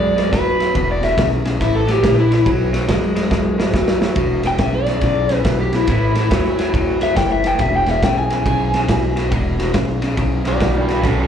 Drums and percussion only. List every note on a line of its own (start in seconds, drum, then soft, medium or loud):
0.18 snare soft
0.18 ride medium
0.33 kick medium
0.33 snare loud
0.33 ride medium
0.60 snare soft
0.60 ride medium
0.75 kick medium
0.75 ride medium
1.03 snare soft
1.03 ride medium
1.18 kick loud
1.18 snare loud
1.18 ride medium
1.45 snare soft
1.45 ride medium
1.61 kick medium
1.61 snare soft
1.61 ride medium
1.88 snare soft
1.88 ride medium
2.04 kick medium
2.04 snare loud
2.04 ride medium
2.32 snare soft
2.32 ride medium
2.46 kick medium
2.46 ride medium
2.74 snare soft
2.74 ride medium
2.89 kick medium
2.89 snare loud
2.89 ride medium
3.16 snare soft
3.16 ride medium
3.31 kick medium
3.31 snare medium
3.60 snare medium
3.74 kick medium
3.74 snare medium
3.88 snare medium
4.02 snare medium
4.15 kick loud
4.15 ride medium
4.43 snare soft
4.43 ride medium
4.58 kick medium
4.58 snare loud
4.58 ride medium
4.86 snare soft
4.86 ride medium
5.01 kick medium
5.01 snare soft
5.01 ride medium
5.29 snare soft
5.29 ride medium
5.45 kick medium
5.45 snare loud
5.45 ride medium
5.73 snare soft
5.73 ride medium
5.87 kick medium
5.87 snare soft
5.87 ride medium
6.15 snare soft
6.15 ride medium
6.31 kick medium
6.31 snare loud
6.31 ride loud
6.59 snare soft
6.59 ride medium
6.74 kick medium
6.74 ride medium
7.01 snare soft
7.01 ride medium
7.16 kick medium
7.16 snare loud
7.16 ride medium
7.44 snare soft
7.44 ride medium
7.59 kick medium
7.59 snare soft
7.59 ride medium
7.86 snare soft
7.86 ride medium
8.03 kick medium
8.03 snare loud
8.03 ride medium
8.30 snare soft
8.30 ride medium
8.46 kick medium
8.46 ride medium
8.74 snare soft
8.74 ride medium
8.88 kick medium
8.88 snare loud
8.88 ride medium
9.17 snare soft
9.17 ride medium
9.32 kick medium
9.32 ride medium
9.59 snare soft
9.59 ride medium
9.74 kick medium
9.74 snare loud
9.74 ride medium
10.02 snare soft
10.02 ride medium
10.17 kick medium
10.17 ride medium
10.45 snare soft
10.45 ride medium
10.60 kick medium
10.60 snare loud
10.60 ride medium
10.88 snare soft
10.88 ride medium
11.04 kick medium
11.04 snare soft
11.04 ride medium